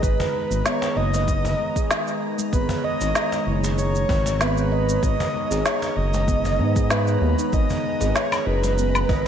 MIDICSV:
0, 0, Header, 1, 7, 480
1, 0, Start_track
1, 0, Key_signature, 5, "minor"
1, 0, Tempo, 625000
1, 24, Time_signature, 4, 2, 24, 8
1, 7126, End_track
2, 0, Start_track
2, 0, Title_t, "Soft synth lead"
2, 0, Program_c, 0, 80
2, 16, Note_on_c, 0, 71, 93
2, 500, Note_on_c, 0, 73, 102
2, 512, Note_off_c, 0, 71, 0
2, 743, Note_on_c, 0, 75, 106
2, 755, Note_off_c, 0, 73, 0
2, 1704, Note_off_c, 0, 75, 0
2, 1945, Note_on_c, 0, 71, 95
2, 2185, Note_on_c, 0, 75, 120
2, 2196, Note_off_c, 0, 71, 0
2, 2664, Note_off_c, 0, 75, 0
2, 2900, Note_on_c, 0, 73, 91
2, 3384, Note_on_c, 0, 71, 93
2, 3395, Note_off_c, 0, 73, 0
2, 3862, Note_on_c, 0, 75, 93
2, 3874, Note_off_c, 0, 71, 0
2, 4344, Note_on_c, 0, 73, 92
2, 4356, Note_off_c, 0, 75, 0
2, 4582, Note_on_c, 0, 75, 108
2, 4594, Note_off_c, 0, 73, 0
2, 5303, Note_on_c, 0, 71, 91
2, 5314, Note_off_c, 0, 75, 0
2, 5776, Note_off_c, 0, 71, 0
2, 5781, Note_on_c, 0, 75, 101
2, 6259, Note_on_c, 0, 73, 94
2, 6270, Note_off_c, 0, 75, 0
2, 6498, Note_on_c, 0, 71, 103
2, 6509, Note_off_c, 0, 73, 0
2, 7126, Note_off_c, 0, 71, 0
2, 7126, End_track
3, 0, Start_track
3, 0, Title_t, "Analog synth pad"
3, 0, Program_c, 1, 89
3, 0, Note_on_c, 1, 51, 72
3, 0, Note_on_c, 1, 56, 70
3, 0, Note_on_c, 1, 71, 85
3, 0, Note_on_c, 1, 82, 68
3, 1937, Note_off_c, 1, 71, 0
3, 1947, Note_on_c, 1, 73, 85
3, 5781, Note_off_c, 1, 73, 0
3, 5786, Note_on_c, 1, 71, 87
3, 7126, Note_off_c, 1, 51, 0
3, 7126, Note_off_c, 1, 56, 0
3, 7126, Note_off_c, 1, 71, 0
3, 7126, Note_off_c, 1, 82, 0
3, 7126, End_track
4, 0, Start_track
4, 0, Title_t, "Handpan"
4, 0, Program_c, 2, 114
4, 0, Note_on_c, 2, 68, 71
4, 382, Note_off_c, 2, 68, 0
4, 397, Note_on_c, 2, 56, 93
4, 495, Note_off_c, 2, 56, 0
4, 504, Note_on_c, 2, 59, 78
4, 627, Note_off_c, 2, 59, 0
4, 743, Note_on_c, 2, 75, 91
4, 860, Note_off_c, 2, 75, 0
4, 875, Note_on_c, 2, 56, 72
4, 1214, Note_off_c, 2, 56, 0
4, 1226, Note_on_c, 2, 56, 71
4, 1342, Note_off_c, 2, 56, 0
4, 1355, Note_on_c, 2, 68, 76
4, 1821, Note_off_c, 2, 68, 0
4, 1833, Note_on_c, 2, 56, 93
4, 1932, Note_off_c, 2, 56, 0
4, 1945, Note_on_c, 2, 59, 81
4, 2068, Note_off_c, 2, 59, 0
4, 2182, Note_on_c, 2, 75, 97
4, 2300, Note_off_c, 2, 75, 0
4, 2312, Note_on_c, 2, 56, 70
4, 2652, Note_off_c, 2, 56, 0
4, 2662, Note_on_c, 2, 56, 67
4, 2780, Note_off_c, 2, 56, 0
4, 2791, Note_on_c, 2, 68, 68
4, 3260, Note_off_c, 2, 68, 0
4, 3272, Note_on_c, 2, 56, 96
4, 3372, Note_off_c, 2, 56, 0
4, 3384, Note_on_c, 2, 59, 88
4, 3507, Note_off_c, 2, 59, 0
4, 3624, Note_on_c, 2, 75, 92
4, 3741, Note_off_c, 2, 75, 0
4, 3754, Note_on_c, 2, 56, 74
4, 4093, Note_off_c, 2, 56, 0
4, 4104, Note_on_c, 2, 56, 76
4, 4221, Note_off_c, 2, 56, 0
4, 4233, Note_on_c, 2, 68, 66
4, 4700, Note_off_c, 2, 68, 0
4, 4713, Note_on_c, 2, 56, 91
4, 4812, Note_off_c, 2, 56, 0
4, 4822, Note_on_c, 2, 59, 74
4, 4946, Note_off_c, 2, 59, 0
4, 5063, Note_on_c, 2, 59, 97
4, 5137, Note_off_c, 2, 59, 0
4, 5193, Note_on_c, 2, 68, 78
4, 5293, Note_off_c, 2, 68, 0
4, 5304, Note_on_c, 2, 56, 95
4, 5427, Note_off_c, 2, 56, 0
4, 5545, Note_on_c, 2, 59, 75
4, 5668, Note_off_c, 2, 59, 0
4, 5673, Note_on_c, 2, 63, 73
4, 5778, Note_off_c, 2, 63, 0
4, 6022, Note_on_c, 2, 56, 74
4, 6140, Note_off_c, 2, 56, 0
4, 6153, Note_on_c, 2, 68, 69
4, 6620, Note_off_c, 2, 68, 0
4, 6632, Note_on_c, 2, 56, 89
4, 6732, Note_off_c, 2, 56, 0
4, 6744, Note_on_c, 2, 59, 77
4, 6867, Note_off_c, 2, 59, 0
4, 6984, Note_on_c, 2, 75, 101
4, 7101, Note_off_c, 2, 75, 0
4, 7126, End_track
5, 0, Start_track
5, 0, Title_t, "Analog synth bass"
5, 0, Program_c, 3, 38
5, 22, Note_on_c, 3, 32, 99
5, 125, Note_off_c, 3, 32, 0
5, 390, Note_on_c, 3, 32, 88
5, 479, Note_off_c, 3, 32, 0
5, 741, Note_on_c, 3, 30, 84
5, 1185, Note_off_c, 3, 30, 0
5, 1942, Note_on_c, 3, 32, 92
5, 2045, Note_off_c, 3, 32, 0
5, 2312, Note_on_c, 3, 32, 85
5, 2399, Note_off_c, 3, 32, 0
5, 2661, Note_on_c, 3, 30, 86
5, 3105, Note_off_c, 3, 30, 0
5, 3141, Note_on_c, 3, 32, 92
5, 3825, Note_off_c, 3, 32, 0
5, 3861, Note_on_c, 3, 32, 98
5, 3965, Note_off_c, 3, 32, 0
5, 4231, Note_on_c, 3, 32, 90
5, 4319, Note_off_c, 3, 32, 0
5, 4583, Note_on_c, 3, 30, 85
5, 5060, Note_on_c, 3, 44, 85
5, 5071, Note_off_c, 3, 30, 0
5, 5504, Note_off_c, 3, 44, 0
5, 5540, Note_on_c, 3, 39, 99
5, 5644, Note_off_c, 3, 39, 0
5, 5782, Note_on_c, 3, 32, 100
5, 5885, Note_off_c, 3, 32, 0
5, 6152, Note_on_c, 3, 32, 86
5, 6240, Note_off_c, 3, 32, 0
5, 6503, Note_on_c, 3, 30, 86
5, 6946, Note_off_c, 3, 30, 0
5, 6983, Note_on_c, 3, 32, 93
5, 7126, Note_off_c, 3, 32, 0
5, 7126, End_track
6, 0, Start_track
6, 0, Title_t, "Cajon"
6, 153, Note_on_c, 9, 36, 95
6, 229, Note_off_c, 9, 36, 0
6, 630, Note_on_c, 9, 38, 77
6, 707, Note_off_c, 9, 38, 0
6, 876, Note_on_c, 9, 38, 59
6, 953, Note_off_c, 9, 38, 0
6, 1111, Note_on_c, 9, 36, 81
6, 1188, Note_off_c, 9, 36, 0
6, 2066, Note_on_c, 9, 36, 90
6, 2142, Note_off_c, 9, 36, 0
6, 2317, Note_on_c, 9, 38, 53
6, 2394, Note_off_c, 9, 38, 0
6, 2552, Note_on_c, 9, 38, 68
6, 2629, Note_off_c, 9, 38, 0
6, 2798, Note_on_c, 9, 38, 67
6, 2875, Note_off_c, 9, 38, 0
6, 3142, Note_on_c, 9, 38, 68
6, 3147, Note_on_c, 9, 36, 91
6, 3219, Note_off_c, 9, 38, 0
6, 3224, Note_off_c, 9, 36, 0
6, 3270, Note_on_c, 9, 38, 77
6, 3347, Note_off_c, 9, 38, 0
6, 3995, Note_on_c, 9, 36, 94
6, 4072, Note_off_c, 9, 36, 0
6, 4238, Note_on_c, 9, 38, 61
6, 4315, Note_off_c, 9, 38, 0
6, 4472, Note_on_c, 9, 38, 68
6, 4549, Note_off_c, 9, 38, 0
6, 4717, Note_on_c, 9, 38, 64
6, 4793, Note_off_c, 9, 38, 0
6, 4949, Note_on_c, 9, 38, 33
6, 4954, Note_on_c, 9, 36, 76
6, 5026, Note_off_c, 9, 38, 0
6, 5031, Note_off_c, 9, 36, 0
6, 5917, Note_on_c, 9, 36, 82
6, 5993, Note_off_c, 9, 36, 0
6, 6149, Note_on_c, 9, 38, 55
6, 6226, Note_off_c, 9, 38, 0
6, 6390, Note_on_c, 9, 38, 70
6, 6467, Note_off_c, 9, 38, 0
6, 6631, Note_on_c, 9, 38, 59
6, 6708, Note_off_c, 9, 38, 0
6, 6982, Note_on_c, 9, 36, 85
6, 6986, Note_on_c, 9, 38, 59
6, 7059, Note_off_c, 9, 36, 0
6, 7063, Note_off_c, 9, 38, 0
6, 7126, End_track
7, 0, Start_track
7, 0, Title_t, "Drums"
7, 23, Note_on_c, 9, 36, 116
7, 24, Note_on_c, 9, 69, 58
7, 100, Note_off_c, 9, 36, 0
7, 101, Note_off_c, 9, 69, 0
7, 155, Note_on_c, 9, 69, 30
7, 232, Note_off_c, 9, 69, 0
7, 394, Note_on_c, 9, 69, 66
7, 471, Note_off_c, 9, 69, 0
7, 504, Note_on_c, 9, 38, 88
7, 504, Note_on_c, 9, 69, 49
7, 581, Note_off_c, 9, 38, 0
7, 581, Note_off_c, 9, 69, 0
7, 634, Note_on_c, 9, 69, 34
7, 711, Note_off_c, 9, 69, 0
7, 874, Note_on_c, 9, 69, 65
7, 950, Note_off_c, 9, 69, 0
7, 982, Note_on_c, 9, 36, 91
7, 984, Note_on_c, 9, 69, 54
7, 1058, Note_off_c, 9, 36, 0
7, 1061, Note_off_c, 9, 69, 0
7, 1115, Note_on_c, 9, 69, 35
7, 1191, Note_off_c, 9, 69, 0
7, 1352, Note_on_c, 9, 36, 100
7, 1354, Note_on_c, 9, 69, 65
7, 1428, Note_off_c, 9, 36, 0
7, 1430, Note_off_c, 9, 69, 0
7, 1464, Note_on_c, 9, 38, 102
7, 1464, Note_on_c, 9, 69, 53
7, 1540, Note_off_c, 9, 38, 0
7, 1541, Note_off_c, 9, 69, 0
7, 1593, Note_on_c, 9, 69, 33
7, 1670, Note_off_c, 9, 69, 0
7, 1832, Note_on_c, 9, 69, 67
7, 1909, Note_off_c, 9, 69, 0
7, 1942, Note_on_c, 9, 36, 119
7, 1943, Note_on_c, 9, 69, 59
7, 2018, Note_off_c, 9, 36, 0
7, 2020, Note_off_c, 9, 69, 0
7, 2073, Note_on_c, 9, 69, 31
7, 2149, Note_off_c, 9, 69, 0
7, 2310, Note_on_c, 9, 69, 67
7, 2387, Note_off_c, 9, 69, 0
7, 2422, Note_on_c, 9, 38, 96
7, 2423, Note_on_c, 9, 69, 50
7, 2499, Note_off_c, 9, 38, 0
7, 2499, Note_off_c, 9, 69, 0
7, 2553, Note_on_c, 9, 69, 33
7, 2630, Note_off_c, 9, 69, 0
7, 2794, Note_on_c, 9, 69, 67
7, 2871, Note_off_c, 9, 69, 0
7, 2905, Note_on_c, 9, 69, 53
7, 2982, Note_off_c, 9, 69, 0
7, 3036, Note_on_c, 9, 69, 34
7, 3112, Note_off_c, 9, 69, 0
7, 3142, Note_on_c, 9, 36, 113
7, 3218, Note_off_c, 9, 36, 0
7, 3275, Note_on_c, 9, 69, 68
7, 3351, Note_off_c, 9, 69, 0
7, 3385, Note_on_c, 9, 38, 90
7, 3385, Note_on_c, 9, 69, 52
7, 3462, Note_off_c, 9, 38, 0
7, 3462, Note_off_c, 9, 69, 0
7, 3512, Note_on_c, 9, 69, 34
7, 3589, Note_off_c, 9, 69, 0
7, 3755, Note_on_c, 9, 69, 67
7, 3832, Note_off_c, 9, 69, 0
7, 3862, Note_on_c, 9, 36, 114
7, 3865, Note_on_c, 9, 69, 57
7, 3938, Note_off_c, 9, 36, 0
7, 3942, Note_off_c, 9, 69, 0
7, 3995, Note_on_c, 9, 69, 31
7, 4072, Note_off_c, 9, 69, 0
7, 4234, Note_on_c, 9, 69, 65
7, 4310, Note_off_c, 9, 69, 0
7, 4344, Note_on_c, 9, 38, 89
7, 4344, Note_on_c, 9, 69, 54
7, 4420, Note_off_c, 9, 38, 0
7, 4421, Note_off_c, 9, 69, 0
7, 4474, Note_on_c, 9, 69, 33
7, 4550, Note_off_c, 9, 69, 0
7, 4713, Note_on_c, 9, 69, 64
7, 4790, Note_off_c, 9, 69, 0
7, 4822, Note_on_c, 9, 36, 95
7, 4825, Note_on_c, 9, 69, 53
7, 4899, Note_off_c, 9, 36, 0
7, 4902, Note_off_c, 9, 69, 0
7, 4953, Note_on_c, 9, 69, 32
7, 5030, Note_off_c, 9, 69, 0
7, 5192, Note_on_c, 9, 36, 105
7, 5192, Note_on_c, 9, 69, 64
7, 5269, Note_off_c, 9, 36, 0
7, 5269, Note_off_c, 9, 69, 0
7, 5303, Note_on_c, 9, 38, 94
7, 5303, Note_on_c, 9, 69, 53
7, 5380, Note_off_c, 9, 38, 0
7, 5380, Note_off_c, 9, 69, 0
7, 5432, Note_on_c, 9, 69, 31
7, 5509, Note_off_c, 9, 69, 0
7, 5672, Note_on_c, 9, 69, 64
7, 5749, Note_off_c, 9, 69, 0
7, 5782, Note_on_c, 9, 69, 55
7, 5783, Note_on_c, 9, 36, 113
7, 5859, Note_off_c, 9, 69, 0
7, 5860, Note_off_c, 9, 36, 0
7, 5911, Note_on_c, 9, 69, 31
7, 5987, Note_off_c, 9, 69, 0
7, 6152, Note_on_c, 9, 69, 62
7, 6229, Note_off_c, 9, 69, 0
7, 6264, Note_on_c, 9, 38, 84
7, 6264, Note_on_c, 9, 69, 51
7, 6340, Note_off_c, 9, 38, 0
7, 6341, Note_off_c, 9, 69, 0
7, 6392, Note_on_c, 9, 69, 32
7, 6392, Note_on_c, 9, 77, 72
7, 6469, Note_off_c, 9, 69, 0
7, 6469, Note_off_c, 9, 77, 0
7, 6633, Note_on_c, 9, 69, 66
7, 6709, Note_off_c, 9, 69, 0
7, 6743, Note_on_c, 9, 69, 52
7, 6820, Note_off_c, 9, 69, 0
7, 6875, Note_on_c, 9, 69, 34
7, 6875, Note_on_c, 9, 77, 76
7, 6951, Note_off_c, 9, 77, 0
7, 6952, Note_off_c, 9, 69, 0
7, 6983, Note_on_c, 9, 36, 99
7, 7060, Note_off_c, 9, 36, 0
7, 7126, End_track
0, 0, End_of_file